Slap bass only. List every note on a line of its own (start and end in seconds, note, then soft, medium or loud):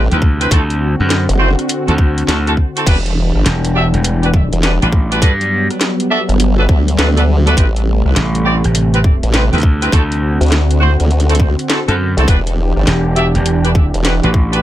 0.12 0.50 D2 loud
0.51 0.97 D2 loud
1.00 1.26 F#2 loud
1.88 2.26 D2 loud
2.28 2.56 D2 medium
3.46 3.91 E1 loud
3.94 4.50 E1 loud
4.82 5.21 A1 loud
5.22 5.67 G2 loud
8.16 8.61 A1 loud
8.65 9.20 A1 loud
9.53 9.91 D2 loud
9.93 10.38 D2 loud
11.88 12.14 F#2 loud
12.87 13.32 E1 loud
13.35 13.74 E1 loud
13.74 13.91 D#1 loud
14.24 14.62 A1 loud